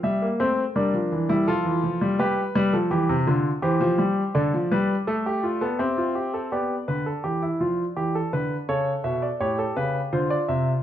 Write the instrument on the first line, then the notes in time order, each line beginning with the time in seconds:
grand piano
0.03 G3 E5
0.22 A#3
0.40 A3 C4 C5
0.76 G3 D4 A#4
0.94 F3
1.12 E3
1.29 G3 E4
1.47 F3 F4 A4
1.65 E3
1.83 F3
2.01 G3
2.19 G3 G4 B4
2.55 G3 B4
2.73 F3 A4
2.91 E3 G4
3.09 C3
3.27 D3 F4
3.62 E3 G4 C5
3.81 F3
3.98 G3
4.35 D3 A4 D5
4.54 F3
4.72 G3 B4
5.07 A3 A4
5.26 G4
5.43 F4
5.61 B3 A4
5.79 C4 G4 E5
5.98 F4
6.15 G4
6.34 A4
6.52 B3 G4 D5
6.88 D3 B4
7.06 A4
7.24 E3 G4
7.42 E4
7.60 F3 F4
7.97 E3 G4
8.15 A4
8.33 D3 B4
8.69 C#3 A4 C#5
9.04 B2 E5
9.22 D5
9.40 A2 G4 C#5
9.59 A4
9.77 C#3 B4
10.13 D3 F4 C5
10.30 D5
10.48 C3 E5